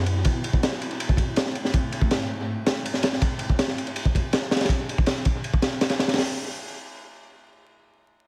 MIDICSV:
0, 0, Header, 1, 5, 480
1, 0, Start_track
1, 0, Tempo, 370370
1, 329, Time_signature, 4, 2, 24, 8
1, 10722, End_track
2, 0, Start_track
2, 0, Title_t, "Synth texture"
2, 0, Program_c, 0, 99
2, 0, Note_on_c, 0, 83, 86
2, 340, Note_off_c, 0, 83, 0
2, 10722, End_track
3, 0, Start_track
3, 0, Title_t, "Ambient pad"
3, 0, Program_c, 1, 92
3, 0, Note_on_c, 1, 59, 85
3, 0, Note_on_c, 1, 64, 76
3, 0, Note_on_c, 1, 66, 91
3, 0, Note_on_c, 1, 75, 75
3, 282, Note_off_c, 1, 59, 0
3, 282, Note_off_c, 1, 75, 0
3, 332, Note_on_c, 1, 57, 78
3, 332, Note_on_c, 1, 60, 76
3, 337, Note_on_c, 1, 44, 80
3, 4121, Note_off_c, 1, 64, 0
3, 4122, Note_off_c, 1, 66, 0
3, 4132, Note_off_c, 1, 57, 0
3, 4132, Note_off_c, 1, 60, 0
3, 4135, Note_off_c, 1, 44, 0
3, 10722, End_track
4, 0, Start_track
4, 0, Title_t, "Sub bass"
4, 0, Program_c, 2, 38
4, 0, Note_on_c, 2, 42, 90
4, 310, Note_off_c, 2, 42, 0
4, 10722, End_track
5, 0, Start_track
5, 0, Title_t, "Drums"
5, 82, Note_on_c, 9, 51, 70
5, 211, Note_off_c, 9, 51, 0
5, 319, Note_on_c, 9, 51, 80
5, 329, Note_on_c, 9, 36, 99
5, 448, Note_off_c, 9, 51, 0
5, 459, Note_off_c, 9, 36, 0
5, 570, Note_on_c, 9, 51, 68
5, 692, Note_on_c, 9, 36, 88
5, 700, Note_off_c, 9, 51, 0
5, 817, Note_on_c, 9, 51, 81
5, 819, Note_on_c, 9, 38, 115
5, 821, Note_off_c, 9, 36, 0
5, 934, Note_off_c, 9, 38, 0
5, 934, Note_on_c, 9, 38, 47
5, 946, Note_off_c, 9, 51, 0
5, 1057, Note_on_c, 9, 51, 69
5, 1063, Note_off_c, 9, 38, 0
5, 1176, Note_off_c, 9, 51, 0
5, 1176, Note_on_c, 9, 51, 43
5, 1297, Note_off_c, 9, 51, 0
5, 1297, Note_on_c, 9, 51, 84
5, 1415, Note_on_c, 9, 36, 89
5, 1427, Note_off_c, 9, 51, 0
5, 1519, Note_off_c, 9, 36, 0
5, 1519, Note_on_c, 9, 36, 89
5, 1530, Note_on_c, 9, 51, 69
5, 1649, Note_off_c, 9, 36, 0
5, 1659, Note_off_c, 9, 51, 0
5, 1767, Note_on_c, 9, 51, 87
5, 1778, Note_on_c, 9, 38, 111
5, 1894, Note_off_c, 9, 38, 0
5, 1894, Note_on_c, 9, 38, 43
5, 1896, Note_off_c, 9, 51, 0
5, 2013, Note_on_c, 9, 51, 62
5, 2024, Note_off_c, 9, 38, 0
5, 2136, Note_on_c, 9, 38, 44
5, 2143, Note_off_c, 9, 51, 0
5, 2251, Note_on_c, 9, 51, 79
5, 2254, Note_on_c, 9, 36, 96
5, 2266, Note_off_c, 9, 38, 0
5, 2380, Note_off_c, 9, 51, 0
5, 2383, Note_off_c, 9, 36, 0
5, 2494, Note_on_c, 9, 51, 68
5, 2611, Note_on_c, 9, 36, 85
5, 2623, Note_off_c, 9, 51, 0
5, 2731, Note_on_c, 9, 51, 74
5, 2737, Note_on_c, 9, 38, 99
5, 2741, Note_off_c, 9, 36, 0
5, 2860, Note_off_c, 9, 51, 0
5, 2867, Note_off_c, 9, 38, 0
5, 3453, Note_on_c, 9, 51, 68
5, 3454, Note_on_c, 9, 38, 111
5, 3582, Note_off_c, 9, 51, 0
5, 3584, Note_off_c, 9, 38, 0
5, 3701, Note_on_c, 9, 51, 81
5, 3808, Note_on_c, 9, 38, 46
5, 3830, Note_off_c, 9, 51, 0
5, 3925, Note_on_c, 9, 51, 81
5, 3935, Note_off_c, 9, 38, 0
5, 3935, Note_on_c, 9, 38, 99
5, 4052, Note_off_c, 9, 38, 0
5, 4052, Note_on_c, 9, 38, 44
5, 4054, Note_off_c, 9, 51, 0
5, 4169, Note_on_c, 9, 51, 81
5, 4171, Note_on_c, 9, 36, 94
5, 4182, Note_off_c, 9, 38, 0
5, 4298, Note_off_c, 9, 51, 0
5, 4300, Note_off_c, 9, 36, 0
5, 4393, Note_on_c, 9, 51, 69
5, 4523, Note_off_c, 9, 51, 0
5, 4531, Note_on_c, 9, 36, 81
5, 4650, Note_on_c, 9, 38, 113
5, 4652, Note_on_c, 9, 51, 85
5, 4660, Note_off_c, 9, 36, 0
5, 4769, Note_off_c, 9, 38, 0
5, 4769, Note_on_c, 9, 38, 50
5, 4781, Note_off_c, 9, 51, 0
5, 4898, Note_off_c, 9, 38, 0
5, 4901, Note_on_c, 9, 51, 58
5, 5012, Note_off_c, 9, 51, 0
5, 5012, Note_on_c, 9, 51, 43
5, 5129, Note_off_c, 9, 51, 0
5, 5129, Note_on_c, 9, 51, 78
5, 5254, Note_on_c, 9, 36, 91
5, 5259, Note_off_c, 9, 51, 0
5, 5377, Note_off_c, 9, 36, 0
5, 5377, Note_on_c, 9, 36, 88
5, 5384, Note_on_c, 9, 51, 64
5, 5507, Note_off_c, 9, 36, 0
5, 5514, Note_off_c, 9, 51, 0
5, 5608, Note_on_c, 9, 51, 79
5, 5614, Note_on_c, 9, 38, 108
5, 5724, Note_off_c, 9, 38, 0
5, 5724, Note_on_c, 9, 38, 39
5, 5738, Note_off_c, 9, 51, 0
5, 5848, Note_off_c, 9, 38, 0
5, 5848, Note_on_c, 9, 38, 90
5, 5855, Note_on_c, 9, 51, 64
5, 5913, Note_off_c, 9, 38, 0
5, 5913, Note_on_c, 9, 38, 81
5, 5919, Note_off_c, 9, 51, 0
5, 5919, Note_on_c, 9, 51, 63
5, 5971, Note_off_c, 9, 38, 0
5, 5971, Note_off_c, 9, 51, 0
5, 5971, Note_on_c, 9, 38, 73
5, 5971, Note_on_c, 9, 51, 63
5, 6028, Note_off_c, 9, 38, 0
5, 6028, Note_on_c, 9, 38, 89
5, 6034, Note_off_c, 9, 51, 0
5, 6034, Note_on_c, 9, 51, 64
5, 6080, Note_on_c, 9, 36, 96
5, 6091, Note_off_c, 9, 51, 0
5, 6091, Note_on_c, 9, 51, 72
5, 6157, Note_off_c, 9, 38, 0
5, 6210, Note_off_c, 9, 36, 0
5, 6220, Note_off_c, 9, 51, 0
5, 6340, Note_on_c, 9, 51, 58
5, 6459, Note_on_c, 9, 36, 90
5, 6470, Note_off_c, 9, 51, 0
5, 6563, Note_on_c, 9, 51, 72
5, 6571, Note_on_c, 9, 38, 102
5, 6589, Note_off_c, 9, 36, 0
5, 6692, Note_off_c, 9, 51, 0
5, 6701, Note_off_c, 9, 38, 0
5, 6806, Note_on_c, 9, 51, 66
5, 6814, Note_on_c, 9, 36, 97
5, 6936, Note_off_c, 9, 51, 0
5, 6943, Note_off_c, 9, 36, 0
5, 7051, Note_on_c, 9, 51, 59
5, 7173, Note_on_c, 9, 36, 84
5, 7181, Note_off_c, 9, 51, 0
5, 7287, Note_on_c, 9, 38, 88
5, 7287, Note_on_c, 9, 51, 71
5, 7303, Note_off_c, 9, 36, 0
5, 7417, Note_off_c, 9, 38, 0
5, 7417, Note_off_c, 9, 51, 0
5, 7530, Note_on_c, 9, 51, 75
5, 7532, Note_on_c, 9, 38, 105
5, 7639, Note_off_c, 9, 51, 0
5, 7639, Note_on_c, 9, 51, 76
5, 7646, Note_off_c, 9, 38, 0
5, 7646, Note_on_c, 9, 38, 92
5, 7765, Note_off_c, 9, 38, 0
5, 7765, Note_on_c, 9, 38, 96
5, 7768, Note_off_c, 9, 51, 0
5, 7777, Note_on_c, 9, 51, 69
5, 7879, Note_off_c, 9, 38, 0
5, 7879, Note_on_c, 9, 38, 83
5, 7892, Note_off_c, 9, 51, 0
5, 7892, Note_on_c, 9, 51, 60
5, 7951, Note_off_c, 9, 51, 0
5, 7951, Note_on_c, 9, 51, 64
5, 7952, Note_off_c, 9, 38, 0
5, 7952, Note_on_c, 9, 38, 82
5, 8010, Note_off_c, 9, 38, 0
5, 8010, Note_on_c, 9, 38, 94
5, 8010, Note_on_c, 9, 46, 77
5, 8081, Note_off_c, 9, 51, 0
5, 8140, Note_off_c, 9, 38, 0
5, 8140, Note_off_c, 9, 46, 0
5, 10722, End_track
0, 0, End_of_file